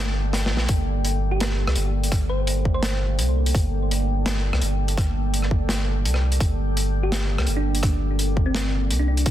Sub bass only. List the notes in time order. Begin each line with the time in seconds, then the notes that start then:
Already playing: G1
0.51 A#1
0.69 G1
1.67 C2
1.76 G1
3.19 C2
3.54 G1
4.53 C2
4.62 G1
6.05 C2
6.40 G1
7.39 C2
7.47 G1
8.90 C2
9.26 G1